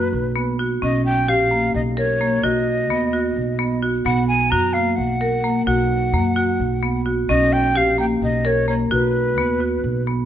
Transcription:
0.00 0.16 F#4 medium
0.00 0.55 B4 medium
0.13 0.78 B1 medium
0.36 0.49 B3 medium
0.59 0.72 F#4 medium
0.82 1.28 B1 medium
0.82 1.08 C#4 medium
0.82 1.04 D#5 medium
1.06 1.31 G5 medium
1.28 1.72 A#1 medium
1.28 1.41 G4 medium
1.28 1.75 F5 medium
1.51 1.77 A#3 medium
1.74 2.40 B1 medium
1.74 1.81 D#5 medium
1.97 2.10 A#4 medium
1.97 2.46 C#5 medium
2.21 2.34 A#3 medium
2.43 2.89 B1 medium
2.43 2.70 F#4 medium
2.43 3.83 D#5 medium
2.89 3.33 D#2 medium
2.89 3.03 B3 medium
3.13 3.39 F#4 medium
3.36 4.01 B1 medium
3.59 3.72 B3 medium
3.83 3.96 F#4 medium
4.05 4.53 B1 medium
4.05 4.32 B3 medium
4.05 4.27 F#5 medium
4.28 4.52 G#5 medium
4.50 4.95 F#2 medium
4.50 4.65 F#4 medium
4.50 4.75 A#5 medium
4.73 5.01 A#3 medium
4.73 4.98 F5 medium
4.96 5.63 B1 medium
4.96 5.65 F#5 medium
5.21 5.34 A#4 medium
5.44 5.57 A#3 medium
5.66 6.14 B1 medium
5.66 5.93 F#4 medium
5.66 7.01 F#5 medium
6.13 6.57 F#2 medium
6.13 6.27 A#3 medium
6.36 6.62 F#4 medium
6.60 7.25 B1 medium
6.83 6.96 B3 medium
7.06 7.19 F#4 medium
7.29 7.75 B1 medium
7.29 7.55 C#4 medium
7.29 7.54 D#5 medium
7.53 7.79 G5 medium
7.75 8.19 A#1 medium
7.75 7.88 G4 medium
7.75 7.99 F5 medium
7.98 8.24 A#3 medium
7.98 8.06 G5 medium
8.22 8.87 B1 medium
8.22 8.48 D#5 medium
8.45 8.58 A#4 medium
8.45 8.68 C#5 medium
8.68 8.81 A#3 medium
8.68 8.75 C#5 medium
8.91 9.38 B1 medium
8.91 9.17 F#4 medium
8.91 10.03 B4 medium
9.38 9.81 D#2 medium
9.38 9.51 B3 medium
9.60 9.87 F#4 medium
9.84 10.25 B1 medium
10.07 10.20 B3 medium

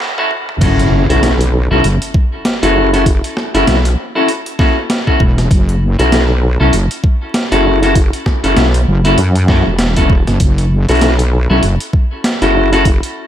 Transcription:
0.00 snare medium
0.00 noise sweep medium
0.18 0.30 C#4 medium
0.18 0.30 E4 medium
0.18 0.30 F#4 medium
0.18 0.30 A4 loud
0.18 high tom medium
0.31 mid tom medium
0.49 mid tom medium
0.61 1.07 F#1 loud
0.61 1.03 C#4 loud
0.61 1.03 E4 medium
0.61 1.03 F#4 medium
0.61 1.03 A4 loud
0.61 kick loud
0.61 closed hi-hat medium
0.61 crash loud
0.61 impact medium
0.79 closed hi-hat medium
1.10 1.68 B1 loud
1.10 1.31 C#4 medium
1.10 1.31 E4 medium
1.10 1.31 F#4 medium
1.10 1.31 A4 medium
1.10 closed hi-hat soft
1.23 snare loud
1.23 closed hi-hat medium
1.41 closed hi-hat medium
1.71 1.82 B1 loud
1.71 1.83 C#4 medium
1.71 1.83 E4 medium
1.71 1.83 F#4 medium
1.71 1.83 A4 medium
1.84 1.99 F#1 medium
1.84 closed hi-hat medium
2.02 closed hi-hat medium
2.14 kick loud
2.45 snare loud
2.45 closed hi-hat medium
2.63 3.21 F#1 loud
2.63 2.89 C#4 medium
2.63 2.89 E4 medium
2.63 2.89 F#4 medium
2.63 2.89 A4 loud
2.63 closed hi-hat medium
2.93 3.05 C#4 medium
2.93 3.05 E4 medium
2.93 3.05 F#4 medium
2.93 3.05 A4 medium
2.93 closed hi-hat soft
3.06 kick loud
3.06 closed hi-hat medium
3.24 closed hi-hat medium
3.37 snare medium
3.55 3.65 F#1 loud
3.55 3.76 C#4 medium
3.55 3.76 E4 medium
3.55 3.76 F#4 medium
3.55 3.76 A4 loud
3.55 closed hi-hat soft
3.67 3.96 B1 medium
3.67 snare loud
3.67 closed hi-hat medium
3.85 closed hi-hat medium
4.15 4.28 C#4 medium
4.15 4.28 E4 loud
4.15 4.27 F#4 medium
4.15 4.28 A4 loud
4.28 closed hi-hat medium
4.46 closed hi-hat medium
4.59 4.75 C#4 medium
4.59 4.75 E4 medium
4.59 4.75 F#4 medium
4.59 4.75 A4 loud
4.59 kick loud
4.59 snare medium
4.90 snare loud
4.90 closed hi-hat medium
5.07 5.19 C#4 medium
5.07 5.19 E4 medium
5.07 5.19 F#4 medium
5.07 5.19 A4 loud
5.07 kick medium
5.20 5.49 E1 medium
5.20 kick loud
5.38 snare soft
5.38 closed hi-hat soft
5.51 5.96 F#1 loud
5.51 kick loud
5.51 closed hi-hat medium
5.69 closed hi-hat medium
5.99 6.58 B1 loud
5.99 6.20 C#4 medium
5.99 6.20 E4 medium
5.99 6.20 F#4 medium
5.99 6.20 A4 medium
5.99 closed hi-hat soft
6.12 snare loud
6.12 closed hi-hat medium
6.60 6.71 B1 loud
6.60 6.72 C#4 medium
6.60 6.72 E4 medium
6.60 6.72 F#4 medium
6.60 6.72 A4 loud
6.73 6.88 F#1 medium
6.73 closed hi-hat medium
6.91 closed hi-hat medium
7.04 kick loud
7.34 snare loud
7.34 closed hi-hat medium
7.52 8.11 F#1 medium
7.52 7.79 C#4 medium
7.52 7.79 E4 medium
7.52 7.79 F#4 medium
7.52 7.79 A4 loud
7.52 closed hi-hat soft
7.83 7.95 C#4 medium
7.83 7.95 E4 medium
7.83 7.95 F#4 medium
7.83 7.95 A4 medium
7.83 closed hi-hat soft
7.95 kick loud
7.95 closed hi-hat medium
8.13 closed hi-hat medium
8.26 kick medium
8.26 snare medium
8.44 8.55 F#1 loud
8.44 8.65 C#4 medium
8.44 8.65 E4 loud
8.44 8.65 F#4 medium
8.44 8.65 A4 loud
8.44 closed hi-hat soft
8.57 8.85 B1 medium
8.57 snare loud
8.57 closed hi-hat medium
8.74 closed hi-hat medium
8.88 9.16 F#1 loud
9.05 9.17 C#4 medium
9.05 9.17 E4 loud
9.05 9.17 F#4 medium
9.05 9.17 A4 loud
9.05 closed hi-hat soft
9.18 9.64 F#2 medium
9.18 closed hi-hat medium
9.35 closed hi-hat medium
9.48 9.65 C#4 medium
9.48 9.65 E4 medium
9.48 9.65 F#4 medium
9.48 9.65 A4 loud
9.48 kick loud
9.48 snare medium
9.67 10.25 E1 loud
9.79 snare loud
9.79 closed hi-hat medium
9.96 10.09 C#4 medium
9.96 10.09 E4 medium
9.96 10.09 F#4 medium
9.96 10.09 A4 loud
9.96 kick medium
9.96 closed hi-hat soft
10.10 kick loud
10.27 10.39 F#1 loud
10.27 snare soft
10.27 closed hi-hat soft
10.40 10.86 F#1 loud
10.40 kick loud
10.40 closed hi-hat medium
10.58 closed hi-hat soft
10.89 11.48 B1 loud
10.89 11.10 C#4 medium
10.89 11.10 E4 medium
10.89 11.10 F#4 medium
10.89 11.10 A4 medium
10.89 closed hi-hat soft
10.91 closed hi-hat soft
10.95 closed hi-hat soft
10.97 closed hi-hat soft
10.99 snare loud
10.99 closed hi-hat soft
11.01 closed hi-hat medium
11.19 closed hi-hat medium
11.50 11.61 B1 loud
11.50 11.62 C#4 medium
11.50 11.62 E4 medium
11.50 11.62 F#4 medium
11.50 11.62 A4 medium
11.63 11.78 F#1 loud
11.63 closed hi-hat medium
11.80 closed hi-hat medium
11.93 kick loud
12.24 snare loud
12.24 closed hi-hat medium
12.42 13.00 F#1 loud
12.42 12.69 C#4 medium
12.42 12.69 E4 medium
12.42 12.69 F#4 medium
12.42 12.69 A4 loud
12.42 closed hi-hat soft
12.73 12.85 C#4 medium
12.73 12.85 E4 medium
12.73 12.85 F#4 medium
12.73 12.85 A4 loud
12.73 closed hi-hat soft
12.85 kick loud
12.85 closed hi-hat medium
13.03 closed hi-hat soft

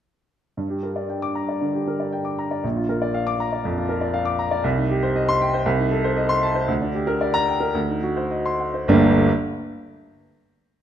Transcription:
0.57 1.59 G2 medium
0.70 0.91 G4 soft
0.83 1.04 A#4 soft
0.96 1.17 D5 soft
1.09 1.31 G5 medium
1.22 1.44 D6 medium
1.35 1.57 A#5 medium
1.49 1.70 D5 soft
1.61 1.82 D3 medium
1.74 1.95 G4 soft
1.88 2.08 A#4 medium
2.00 2.20 D5 medium
2.12 2.33 G5 medium
2.25 2.46 D6 medium
2.39 2.59 A#5 medium
2.51 2.64 D5 medium
2.64 3.62 A#1 medium
2.76 2.97 F4 medium
2.89 3.09 A#4 medium
3.02 3.22 D5 medium
3.14 3.35 F5 medium
3.27 3.47 D6 medium
3.40 3.60 A#5 medium
3.53 3.72 D5 medium
3.65 3.85 F2 medium
3.78 3.97 F4 medium
3.89 4.09 A#4 medium
4.01 4.21 D5 medium
4.14 4.34 F5 medium
4.25 4.46 D6 medium
4.39 4.59 A#5 medium
4.51 4.64 D5 medium
4.64 5.63 C2 medium
4.77 4.98 D#4 medium
4.90 5.10 G4 medium
5.03 5.23 C5 medium
5.16 5.36 D#5 medium
5.29 5.48 C6 loud
5.41 5.61 G5 medium
5.54 5.66 C5 medium
5.66 6.66 C2 loud
5.78 5.99 D#4 medium
5.91 6.12 A4 medium
6.04 6.25 C5 medium
6.17 6.38 D#5 medium
6.29 6.50 C6 loud
6.43 6.64 A5 medium
6.55 6.69 C5 medium
6.68 7.71 D2 medium
6.82 7.03 D4 medium
6.94 7.16 G4 medium
7.07 7.29 A#4 medium
7.21 7.43 D5 medium
7.34 7.56 A#5 loud
7.48 7.70 G5 medium
7.60 7.75 A#4 medium
7.75 8.85 D2 medium
7.89 8.11 D#4 medium
8.03 8.25 F#4 medium
8.17 8.39 C5 medium
8.31 8.54 D#5 medium
8.46 8.69 C6 medium
8.60 8.83 F#5 medium
8.74 8.88 C5 medium
8.88 9.18 G1 loud
8.88 9.18 D2 medium
8.88 9.19 G3 medium
8.88 9.19 A#3 medium
8.88 9.19 D4 medium
8.88 9.19 G4 medium

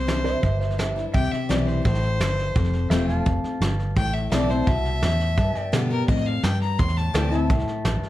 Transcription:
0.00 0.34 C2 medium
0.00 0.39 C3 medium
0.00 0.75 C5 medium
0.07 0.24 E3 soft
0.07 0.25 G3 medium
0.07 0.25 D4 medium
0.07 0.23 E4 medium
0.07 snare loud
0.07 hi-hat pedal medium
0.24 0.43 D4 soft
0.24 0.42 E4 soft
0.24 0.41 C5 medium
0.24 0.41 E5 medium
0.24 snare soft
0.42 1.04 G1 medium
0.42 1.11 G2 medium
0.42 0.59 C5 medium
0.42 0.60 E5 medium
0.42 kick medium
0.42 snare soft
0.60 0.77 C5 medium
0.60 0.77 E5 medium
0.60 snare soft
0.70 snare soft
0.78 0.96 E3 medium
0.78 0.96 G3 medium
0.78 0.96 D4 medium
0.78 0.95 E4 medium
0.78 1.04 E5 medium
0.78 snare medium
0.78 hi-hat pedal medium
0.96 1.14 D4 soft
0.96 1.13 E4 medium
0.96 snare soft
1.14 1.31 C2 medium
1.14 1.81 C3 medium
1.14 2.54 E5 medium
1.14 2.54 G5 medium
1.14 1.33 G5 medium
1.14 kick loud
1.14 snare soft
1.24 snare soft
1.32 1.51 E5 medium
1.32 snare soft
1.49 1.84 B1 medium
1.49 1.83 E3 medium
1.49 1.83 G3 medium
1.49 1.83 C4 medium
1.49 1.84 E4 medium
1.49 1.68 D5 medium
1.49 snare loud
1.49 hi-hat pedal medium
1.66 1.84 C5 medium
1.66 snare soft
1.84 2.19 A1 medium
1.84 2.18 A2 medium
1.84 2.88 C5 loud
1.84 kick loud
1.84 snare soft
1.94 snare soft
2.03 snare soft
2.20 2.54 G1 medium
2.20 2.54 G2 medium
2.20 snare loud
2.20 hi-hat pedal medium
2.38 snare soft
2.56 2.90 F1 medium
2.56 3.23 F2 medium
2.56 kick loud
2.56 snare soft
2.64 snare soft
2.73 snare soft
2.90 3.25 E1 medium
2.90 3.24 F3 medium
2.90 3.25 A3 medium
2.90 3.25 C4 medium
2.90 3.25 F4 loud
2.90 3.10 E5 medium
2.90 3.17 G5 medium
2.90 snare loud
2.90 hi-hat pedal medium
3.09 3.95 F5 medium
3.09 snare soft
3.17 3.96 A5 medium
3.26 3.43 F1 medium
3.26 3.60 F2 medium
3.26 kick loud
3.26 snare soft
3.43 muted fingered electric bass stroke soft
3.43 snare soft
3.60 3.95 G1 medium
3.60 3.95 G2 medium
3.60 snare loud
3.60 hi-hat pedal medium
3.79 snare soft
3.96 4.31 A1 medium
3.96 4.64 A2 medium
3.96 4.15 G5 loud
3.96 kick loud
3.96 snare soft
4.05 snare soft
4.14 4.31 E5 medium
4.14 snare soft
4.31 4.66 B1 medium
4.31 4.49 E3 medium
4.31 4.49 A3 loud
4.31 4.49 C4 loud
4.31 4.48 E4 loud
4.31 4.52 D5 loud
4.31 5.37 E5 medium
4.31 5.38 A5 medium
4.31 snare loud
4.31 hi-hat pedal medium
4.49 4.68 C4 soft
4.49 4.67 E4 medium
4.49 4.69 C5 medium
4.49 snare soft
4.67 5.01 C2 medium
4.67 5.01 B2 medium
4.67 5.70 E5 loud
4.67 kick loud
4.67 snare soft
4.85 snare soft
5.02 5.37 E2 medium
5.02 5.36 A2 medium
5.02 snare loud
5.02 hi-hat pedal medium
5.20 snare soft
5.37 5.54 G2 medium
5.37 6.05 G2 medium
5.37 5.63 E5 medium
5.37 5.64 A5 medium
5.37 kick loud
5.37 snare soft
5.55 muted fingered electric bass stroke soft
5.55 snare soft
5.63 6.78 D5 medium
5.63 6.78 G5 medium
5.72 6.07 B2 medium
5.72 5.90 D3 medium
5.72 5.90 G3 medium
5.72 5.91 B3 medium
5.72 5.89 G4 medium
5.72 snare loud
5.72 hi-hat pedal medium
5.90 6.09 B3 soft
5.90 6.08 G4 medium
5.90 6.08 A#4 loud
5.90 snare soft
6.08 6.42 F2 medium
6.08 6.43 A2 medium
6.08 6.28 D#5 medium
6.08 kick loud
6.08 snare soft
6.17 snare soft
6.26 6.45 F5 medium
6.26 snare soft
6.43 6.78 G2 medium
6.43 6.77 G2 medium
6.43 6.61 G5 loud
6.43 snare loud
6.43 hi-hat pedal medium
6.61 6.80 A#5 medium
6.61 snare soft
6.79 7.14 E2 medium
6.79 7.47 A2 medium
6.79 6.98 C6 medium
6.79 kick loud
6.79 snare soft
6.88 snare soft
6.97 7.31 A5 medium
6.97 snare soft
7.14 7.49 D2 medium
7.14 7.31 E3 medium
7.14 7.31 A3 medium
7.14 7.32 C4 loud
7.14 7.30 E4 medium
7.14 7.39 D5 medium
7.14 7.41 G5 medium
7.14 snare loud
7.14 hi-hat pedal medium
7.32 7.50 C4 soft
7.32 7.49 E4 medium
7.32 snare soft
7.39 8.09 E5 medium
7.39 8.09 A5 medium
7.50 7.66 C2 medium
7.50 7.84 A2 medium
7.50 kick loud
7.50 snare soft
7.59 snare soft
7.67 muted fingered electric bass stroke soft
7.67 snare soft
7.85 8.01 A1 loud
7.85 8.09 G2 medium
7.85 snare loud
7.85 hi-hat pedal medium
8.02 muted fingered electric bass stroke soft
8.02 snare soft

